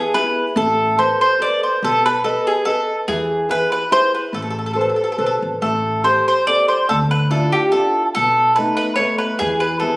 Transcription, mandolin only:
Already playing: G#4
0.14 B4
0.57 A4
0.99 C5
1.21 C5
1.42 D5
1.63 C5
1.84 A4
2.06 B4
2.24 A4
2.47 G#4
2.65 A4
3.08 G#4
3.51 B4
3.72 B4
3.92 C5
4.14 B4
4.34 A4
4.42 A4
4.50 A4
4.59 A4
4.66 A4
4.73 A4
4.81 A4
4.89 A4
4.96 A4
5.04 A4
5.12 A4
5.19 A4
5.26 A4
5.62 A4
6.04 C5
6.28 C5
6.47 D5
6.68 C5
6.89 A4
7.11 B4
7.31 A4
7.52 G4
7.72 A4
8.15 A4
8.56 B4
8.77 B4
8.96 C#5
9.18 B4
9.39 G#4
9.60 B4
9.80 A4

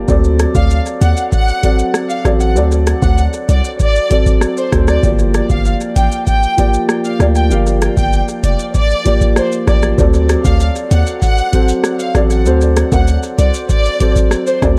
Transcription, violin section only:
0.55 F5
1.02 F#5
1.32 F#5
2.10 F5
2.41 F#5
3.03 F#5
3.49 D5
3.80 D5
4.57 C5
4.88 D5
5.50 F5
5.97 G5
6.27 G5
7.05 F5
7.35 G5
7.97 G5
8.44 D5
8.75 D5
9.37 C5
9.68 D5
10.45 F5
10.91 F#5
11.22 F#5
11.99 F5
12.30 F#5
12.92 F#5
13.38 D5
13.69 D5
14.47 C5

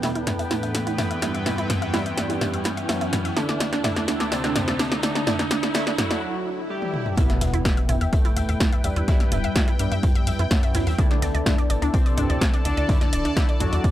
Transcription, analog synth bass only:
7.17 E2
7.41 E2
7.54 E2
7.65 E2
7.89 B1
8.01 E2
8.13 E2
8.37 E2
8.49 E2
8.60 E2
8.84 E2
8.96 E2
9.08 E2
9.32 E1
9.44 E2
9.56 G2
9.79 G2
9.92 G2
10.03 F#2
10.27 F#2
10.39 F#2
10.51 E2
10.75 E2
10.87 E2
10.99 D2
11.22 D2
11.35 D2
11.46 D2
11.70 A1
11.82 D2
11.94 D2
12.18 D2
12.30 D2
12.41 D2
12.65 D2
12.77 D2
12.89 D2
13.13 D1
13.25 D2
13.37 E2
13.60 E2
13.73 E2
13.84 E2

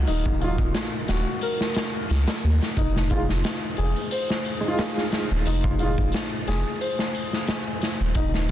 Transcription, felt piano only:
Already playing: F#4 A#4
0.07 D#4
0.41 F4
1.09 F#4
1.43 A#4
2.77 D#4
3.11 F4
3.78 G#4
4.12 C5
5.46 D#4
5.80 F4
6.48 G#4
6.81 C5
8.16 D#4

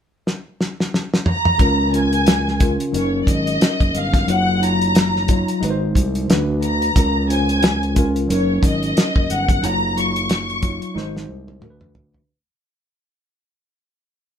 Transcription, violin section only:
1.28 A#5
1.95 G#5
2.95 C#5
3.23 D5
3.28 D#5
3.96 F5
4.30 F#5
4.64 A#5
6.64 A#5
7.30 G#5
8.32 C#5
8.66 D#5
9.32 F#5
9.65 A#5
9.98 C#6

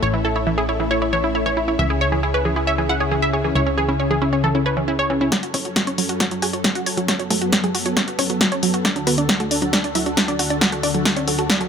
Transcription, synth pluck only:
0.03 C#5
0.14 E4
0.25 A4
0.36 E4
0.47 E4
0.58 G#4
0.69 E4
0.80 E4
0.91 C#5
1.02 E4
1.13 C#5
1.24 E4
1.35 E4
1.46 C#5
1.57 E4
1.68 E4
1.79 E5
1.90 G#4
2.01 C#5
2.12 G#4
2.23 G#4
2.34 B4
2.45 G#4
2.56 G#4
2.67 E5
2.78 G#4
2.89 F#5
3.00 G#4
3.11 G#4
3.22 E5
3.33 G#4
3.44 G#4
3.55 C#5
3.67 C#4
3.78 G#4
3.89 C#4
4.00 C#4
4.11 G#4
4.22 C#4
4.33 C#4
4.44 A4
4.55 C#4
4.66 B4
4.77 C#4
4.88 C#4
4.99 C#5
5.10 C#4
5.21 C#4
5.32 F#4 F#5
5.43 F#4
5.54 C#4 C#5
5.65 F#4
5.76 F#4
5.87 C#4 C#5
5.98 F#4
6.09 F#4
6.20 F#4 F#5
6.31 F#4
6.42 G#4 G#5
6.53 F#4
6.64 F#4
6.75 F#4 F#5
6.86 F#4
6.97 F#4
7.08 C#4 C#5
7.20 F#4
7.30 A3 A4
7.42 F#4
7.53 F#4
7.64 G#3 G#4
7.75 F#4
7.86 F#4
7.97 C#4 C#5
8.08 F#4
8.19 C#4 C#5
8.30 F#4
8.41 F#4
8.52 C#4 C#5
8.63 F#4
8.74 F#4
8.85 D4 D5
8.96 D4
9.07 B3 B4
9.18 D4
9.29 D4
9.40 A3 A4
9.51 D4
9.62 D4
9.73 D4 D5
9.84 D4
9.95 E4 E5
10.06 D4
10.17 D4
10.28 D4 D5
10.39 D4
10.50 D4
10.61 F#4 F#5
10.72 A4
10.83 D4 D5
10.94 A4
11.05 A4
11.16 C#4 C#5
11.28 A4
11.39 A4
11.50 F#4 F#5
11.61 A4

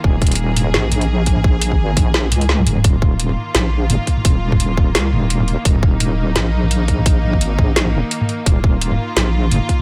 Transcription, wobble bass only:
0.04 D#1
0.74 A#1
1.79 G#1
1.97 A#1
2.32 C#2
2.67 D#1
2.84 D#1
3.55 A#1
3.90 F#1
4.25 D#1
4.95 C#2
5.13 D#1
5.65 D#1
6.36 A#1
7.41 G#1
7.58 A#1
7.94 D#1
8.46 D#1
9.16 A#1
9.51 F#1

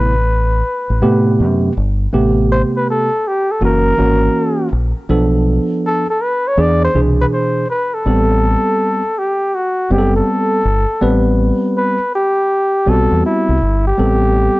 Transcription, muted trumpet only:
Already playing: B4
2.52 C5
2.76 B4
2.90 A4
3.27 G4
3.51 A4
3.65 A#4
5.86 A4
6.10 A4
6.23 B4
6.48 C#5
6.61 D5
6.85 C5
7.21 B4
7.33 C5
7.70 B4
7.94 A4
9.19 G4
9.55 F#4
9.92 G4
10.16 A4
11.77 B4
12.15 G4
12.89 A4
13.26 E4
13.87 G4

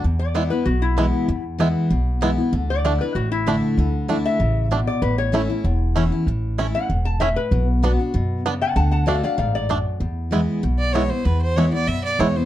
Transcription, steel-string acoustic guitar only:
0.04 E2
0.34 E3 G#3 B3 E4
0.51 B3 E4
0.66 B2
0.97 E3 G#3 B3 E4
1.29 E2
1.58 E3 G#3 B3 E4
1.90 B2
2.21 E3 G#3 B3 E4
2.38 B3 E4
2.53 D3
2.84 D3 A3 D4 E4
3.01 D4 E4
3.16 A2
3.46 D3 A3 D4 E4
3.78 D3
4.08 D3 A3 D4 E4
4.40 C#3
4.71 B2
5.02 A2
5.32 E3 A3 C#4 E4
5.50 C#4 E4
5.64 E2
5.96 E3 A3 C#4 E4
6.12 C#4 E4
6.28 A2
6.58 E3 A3 C#4 E4
6.75 C#4 E4
6.90 G#2
7.20 A2
7.52 B2
7.83 F#3 B3 D4 F#4
7.99 D4 F#4
8.14 B2
8.46 C#3
8.76 D3
9.06 D3 A3 D4 F#4
9.23 D4 F#4
9.38 G#2
9.69 F#2
10.00 E2
10.31 E3 G#3 B3 E4
10.63 B2
10.94 E3 G#3 B3 E4
11.11 B3 E4
11.25 E2
11.56 E3 G#3 B3 E4
11.72 B3 E4
11.88 B2
12.19 E3 G#3 B3 E4
12.36 B3 E4

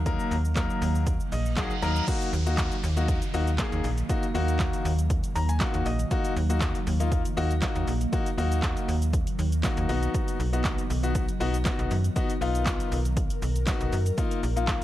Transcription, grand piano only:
0.06 F#3 A#3 D#4 A#4
0.56 F#3 A#3 D#4 A#4
1.32 D#5
1.57 F#3 A#3 D#4 G#4 F#5
1.82 F#3 A#3 D#4 A#4 A#5
2.08 A#3 D#4 F#4
2.46 A#3 D#4 F#4
2.96 A#3 D#4 F#4
3.34 A#3 D#4 F#4
3.59 A#3 D#4 G#4
4.09 A#3 D#4 F#4
4.34 A#3 D#4 F#4
5.36 A#5
5.49 G#5
5.60 A#3 D#4 F#4 F#5
5.86 D#5
6.11 A#3 D#4 F#4
6.49 A#3 D#4 F#4
7.00 A#3 D#4 F4
7.37 A#3 D#4 F#4
7.62 A#3 D#4 F#4
8.12 A#3 D#4 F#4
8.38 A#3 D#4 F#4
9.64 A#3 D#4 F#4
9.89 B3 D#4 F#4
10.53 B3 D#4 F#4
11.03 B3 D#4 F#4
11.40 B3 D#4 F#4
11.65 B3 D#4 F#4
12.16 B3 D#4 F#4
12.41 B3 D#4 F4
13.67 B3 D#4 F#4
14.18 A#3 D#4 F4
14.56 A#3 D#4 F4

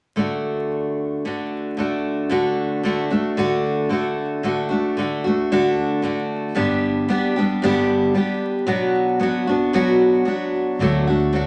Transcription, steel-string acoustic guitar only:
0.16 D3 A3 D4 F#4
1.25 D3 A3 D4 F#4
1.77 D3 A3 D4 F#4
2.30 D3 A3 D4 F#4
2.83 D3 A3 D4 F#4
3.10 A3 D4 F#4
3.37 D3 A3 D4 F#4
3.89 D3 A3 D4 F#4
4.43 D3 A3 D4 F#4
4.69 A3 D4 F#4
4.97 D3 A3 D4 F#4
5.24 A3 D4 F#4
5.52 D3 A3 D4 F#4
6.02 D3 A3 D4 F#4
6.55 G2 D3 G3 B3 D4 G4
7.09 G3 B3 D4 G4
7.36 G3 B3 D4 G4
7.62 G2 D3 G3 B3 D4 G4
8.14 G3 B3 D4 G4
8.66 B2 F#3 B3 D4 F#4
9.20 F#3 B3 D4 F#4
9.47 B3 D4 F#4
9.73 B2 F#3 B3 D4 F#4
10.25 F#3 B3 D4 F#4
10.80 D3 F#3 A3 D4 F#4
11.07 A3 D4 F#4
11.33 F#3 A3 D4 F#4

